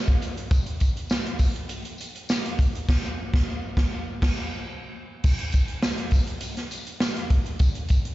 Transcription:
0.08 kick medium
0.08 closed hi-hat soft
0.22 closed hi-hat medium
0.22 tambourine soft
0.37 closed hi-hat medium
0.51 kick loud
0.51 closed hi-hat medium
0.51 tambourine medium
0.66 closed hi-hat medium
0.80 kick medium
0.80 closed hi-hat medium
0.80 tambourine medium
0.97 closed hi-hat medium
1.10 snare loud
1.10 tambourine medium
1.27 closed hi-hat soft
1.39 kick medium
1.39 open hi-hat medium
1.39 tambourine medium
1.56 closed hi-hat medium
1.69 closed hi-hat medium
1.85 closed hi-hat medium
1.98 closed hi-hat medium
1.98 tambourine medium
2.15 closed hi-hat soft
2.29 snare loud
2.29 tambourine loud
2.46 closed hi-hat soft
2.59 kick medium
2.59 closed hi-hat medium
2.59 tambourine soft
2.75 closed hi-hat medium
2.89 kick loud
2.89 snare loud
2.89 crash medium
3.34 kick loud
3.34 snare loud
3.77 kick loud
3.77 snare loud
4.22 kick loud
4.22 snare loud
4.22 crash medium
5.24 kick loud
5.24 crash loud
5.24 tambourine medium
5.39 closed hi-hat medium
5.52 kick medium
5.52 closed hi-hat medium
5.52 tambourine medium
5.68 closed hi-hat medium
5.83 snare loud
5.83 tambourine medium
5.98 closed hi-hat soft
6.11 kick medium
6.11 open hi-hat medium
6.11 tambourine medium
6.27 closed hi-hat medium
6.41 closed hi-hat medium
6.41 tambourine soft
6.57 snare soft
6.57 closed hi-hat medium
6.71 closed hi-hat medium
6.71 tambourine medium
6.87 closed hi-hat medium
7.00 snare loud
7.00 tambourine medium
7.17 closed hi-hat soft
7.30 kick medium
7.30 closed hi-hat medium
7.46 closed hi-hat soft
7.59 kick loud
7.59 closed hi-hat medium
7.59 tambourine medium
7.75 closed hi-hat medium
7.88 kick medium
7.88 closed hi-hat medium
7.88 tambourine medium
8.05 closed hi-hat medium

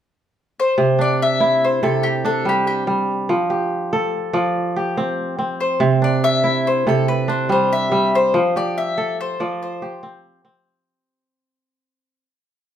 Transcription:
0.60 1.01 C5 medium
0.78 1.82 C3 medium
0.99 2.24 D4 medium
0.99 1.22 D5 medium
1.22 1.64 E5 medium
1.40 2.97 E4 medium
1.64 1.83 C5 medium
1.83 3.34 C3 medium
1.83 3.15 A4 medium
1.83 2.05 A4 medium
2.03 2.23 G4 medium
2.25 3.93 D4 medium
2.25 2.47 A4 medium
2.45 2.86 G3 medium
2.45 2.66 G4 medium
2.67 3.11 G4 medium
2.87 3.34 G3 medium
3.29 4.32 F3 medium
3.50 4.76 G4 medium
3.93 5.25 A4 medium
4.33 5.86 F3 medium
4.33 5.45 D5 medium
4.76 6.18 G4 medium
4.97 5.38 C4 medium
5.39 7.19 C4 medium
5.60 6.04 C5 medium
5.80 6.86 C3 medium
6.02 7.28 D4 medium
6.02 6.25 D5 medium
6.24 6.67 E5 loud
6.44 8.00 E4 medium
6.67 6.88 C5 medium
6.87 8.39 C3 medium
6.87 8.19 A4 medium
6.87 7.08 A4 medium
7.08 7.29 B4 medium
7.28 8.96 D4 medium
7.28 7.51 C5 medium
7.49 7.90 G3 medium
7.49 7.72 C5 medium
7.73 8.15 E5 medium
7.92 8.39 G3 medium
8.15 8.56 C5 medium
8.34 9.39 F3 medium
8.56 9.82 G4 medium
8.56 8.78 D5 medium
8.78 9.16 E5 medium
8.98 10.29 A4 medium
9.21 9.61 C5 medium
9.40 10.92 F3 medium
9.40 10.51 D5 medium
9.63 10.42 C5 medium
9.82 11.23 G4 medium
10.03 10.44 C4 medium
10.45 12.25 C4 medium

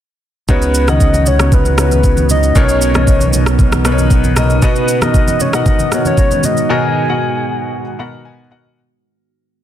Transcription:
0.48 2.52 C#2 medium
0.48 2.53 C#3 medium
0.48 0.80 C#3 loud
0.48 2.53 G#3 medium
0.48 8.72 B3 medium
0.48 0.80 B3 medium
0.48 0.80 D#4 medium
0.48 2.53 F#4 medium
0.48 0.80 F#4 medium
0.48 0.91 B4 medium
0.48 0.80 C#5 loud
0.48 kick loud
0.48 low conga medium
0.48 shaker medium
0.62 shaker medium
0.74 shaker medium
0.88 1.29 C#3 medium
0.88 1.29 D#3 medium
0.88 1.29 B3 medium
0.88 1.29 F#4 medium
0.88 1.29 D#5 loud
0.88 1.29 F#5 medium
0.88 cross-stick medium
0.88 high conga medium
0.88 shaker medium
1.00 kick medium
1.00 shaker medium
1.14 high conga medium
1.14 shaker medium
1.26 1.55 C#5 loud
1.26 low conga medium
1.26 shaker loud
1.39 1.71 C#3 medium
1.39 1.71 B3 medium
1.39 1.71 D#4 medium
1.39 1.71 F#4 medium
1.39 1.71 C#5 medium
1.39 cross-stick loud
1.39 shaker medium
1.52 1.79 B4 loud
1.52 kick loud
1.52 low conga medium
1.52 shaker medium
1.65 high conga medium
1.65 shaker medium
1.78 2.40 C#3 medium
1.78 2.41 B3 medium
1.78 2.41 D#4 medium
1.78 1.85 E4 medium
1.78 2.27 B4 loud
1.78 2.41 C#5 medium
1.78 cross-stick loud
1.78 shaker medium
1.85 2.44 F#4 medium
1.91 high conga medium
1.91 shaker medium
2.04 kick medium
2.04 shaker medium
2.17 high conga medium
2.17 shaker soft
2.29 2.58 D#5 loud
2.29 low conga medium
2.29 shaker medium
2.43 shaker soft
2.55 4.58 B1 medium
2.55 2.87 B2 loud
2.55 4.60 C#3 medium
2.55 2.87 B3 medium
2.55 4.60 D#4 medium
2.55 2.87 D#4 medium
2.55 4.60 A#4 medium
2.55 2.87 A#4 medium
2.55 2.87 C#5 loud
2.55 3.60 C#5 medium
2.55 kick loud
2.55 low conga medium
2.55 shaker medium
2.69 shaker medium
2.81 shaker medium
2.94 3.67 B2 medium
2.94 3.67 B3 medium
2.94 3.67 D#4 medium
2.94 3.67 A#4 medium
2.94 3.68 D#5 medium
2.94 cross-stick medium
2.94 high conga medium
2.94 shaker soft
3.07 kick medium
3.07 shaker medium
3.21 high conga medium
3.21 shaker medium
3.33 low conga medium
3.33 shaker loud
3.46 cross-stick loud
3.46 shaker medium
3.59 kick loud
3.59 low conga medium
3.59 shaker medium
3.72 cross-stick loud
3.72 high conga medium
3.72 shaker medium
3.85 4.27 B2 medium
3.85 4.27 B3 medium
3.85 4.27 D#4 medium
3.85 4.27 A#4 medium
3.85 3.92 B4 medium
3.85 cross-stick loud
3.85 shaker medium
3.92 4.30 C#5 medium
3.98 high conga medium
3.98 shaker medium
4.10 kick medium
4.10 shaker medium
4.24 high conga medium
4.24 shaker soft
4.36 4.57 B2 medium
4.36 4.58 B3 medium
4.36 4.58 D#4 medium
4.36 4.58 A#4 medium
4.36 4.58 D#5 medium
4.36 cross-stick medium
4.36 low conga medium
4.36 shaker loud
4.50 shaker soft
4.62 4.94 B2 loud
4.62 8.72 D#3 medium
4.62 8.72 G#3 medium
4.62 4.94 B3 medium
4.62 8.72 F#4 medium
4.62 4.94 F#4 medium
4.62 4.94 B4 medium
4.62 5.00 B4 medium
4.62 4.94 D#5 loud
4.62 kick loud
4.62 low conga medium
4.62 shaker medium
4.76 shaker medium
4.88 shaker medium
5.02 5.43 B2 medium
5.02 5.43 B3 medium
5.02 5.43 F#4 medium
5.02 5.43 A#4 medium
5.02 5.43 D#5 medium
5.02 5.43 D#5 loud
5.02 cross-stick medium
5.02 high conga medium
5.02 shaker medium
5.14 kick medium
5.14 shaker medium
5.28 high conga medium
5.28 shaker medium
5.40 5.54 C#5 medium
5.40 low conga medium
5.40 shaker loud
5.53 5.84 B2 medium
5.53 5.85 B3 medium
5.53 5.85 F#4 medium
5.53 5.85 A#4 medium
5.53 6.02 D#5 loud
5.53 5.85 F#5 medium
5.53 cross-stick loud
5.53 shaker medium
5.66 kick loud
5.66 low conga medium
5.66 shaker medium
5.79 high conga medium
5.79 shaker medium
5.92 6.54 B2 medium
5.92 6.54 B3 medium
5.92 6.55 F#4 medium
5.92 6.55 A#4 medium
5.92 6.55 C#5 medium
5.92 cross-stick medium
5.92 shaker medium
6.05 6.46 C#5 loud
6.05 high conga medium
6.05 shaker medium
6.17 kick medium
6.17 shaker medium
6.31 high conga medium
6.31 shaker soft
6.43 6.72 D#5 loud
6.43 low conga medium
6.43 shaker loud
6.57 shaker soft
6.69 7.01 B2 loud
6.69 7.01 B3 medium
6.69 7.01 F#4 medium
6.69 7.01 A#4 medium
6.69 7.01 D#5 loud
6.69 8.25 G#5 loud
7.09 7.81 B2 medium
7.09 7.81 B3 medium
7.09 7.81 F#4 medium
7.09 7.81 A#4 medium
7.09 7.81 F#5 medium
7.99 8.41 B2 medium
7.99 8.41 B3 medium
7.99 8.41 F#4 medium
7.99 8.41 A#4 medium
7.99 8.41 F#5 medium
7.99 8.23 B5 medium
8.25 8.49 G#5 medium
8.51 8.71 B2 medium
8.51 8.72 B3 medium
8.51 8.72 F#4 medium
8.51 8.72 A#4 medium
8.51 8.75 D#5 medium
8.51 8.72 F#5 medium

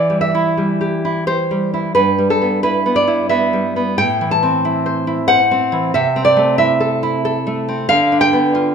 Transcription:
0.00 1.92 E3 medium
0.00 0.20 D5 medium
0.10 0.56 G3 soft
0.21 1.04 E5 medium
0.35 1.04 E4 soft
0.57 1.50 G3 soft
0.81 1.26 G4 soft
1.05 1.27 E4 soft
1.27 1.96 G4 soft
1.27 1.73 C5 medium
1.51 1.97 G3 soft
1.74 1.94 E4 soft
1.95 3.94 G2 medium
1.95 2.28 B4 medium
2.19 3.20 G3 soft
2.30 2.63 A4 medium
2.42 2.64 B3 soft
2.63 3.06 E4 soft
2.63 2.95 B4 medium
2.86 3.29 B3 soft
2.96 3.29 D5 medium
3.07 3.98 E4 soft
3.29 3.75 B3 soft
3.29 3.95 E5 medium
3.53 3.98 G3 soft
3.76 3.99 B3 soft
3.98 5.90 A2 medium
3.98 4.31 G5 loud
4.21 5.19 E3 soft
4.31 5.26 A5 medium
4.43 5.40 C4 soft
4.65 5.06 E4 medium
4.86 5.28 C5 soft
5.07 5.93 E4 medium
5.28 5.93 C5 medium
5.28 5.90 F#5 loud
5.51 5.94 C4 medium
5.72 5.94 E3 soft
5.94 7.87 C3 medium
5.94 6.24 E5 medium
6.16 7.14 C4 medium
6.25 6.57 D5 medium
6.37 7.36 A3 medium
6.58 7.02 E4 medium
6.58 6.90 E5 medium
6.80 7.24 A4 medium
7.03 7.88 E4 medium
7.25 7.90 A4 medium
7.47 7.90 A3 medium
7.68 7.90 C4 medium
7.89 8.75 D3 medium
7.89 8.20 F5 loud
8.12 8.54 D4 soft
8.21 8.75 G5 loud
8.33 8.75 B3 medium
8.55 8.75 F4 medium

